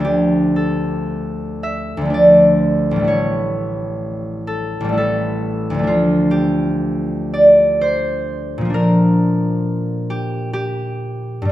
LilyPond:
<<
  \new Staff \with { instrumentName = "Harp" } { \time 3/4 \key d \minor \tempo 4 = 64 g'8 a'4 e''8 d''4 | cis''4. a'8 a'4 | f'8 g'4 d''8 c''4 | bes'4. g'8 g'4 | }
  \new Staff \with { instrumentName = "Harp" } { \clef bass \time 3/4 \key d \minor <d, f a d'>2 <d, f a d'>4 | <a,, g a e'>2 <a,, g a e'>4 | <d, f a d'>2. | <bes, f bes d'>2. | }
>>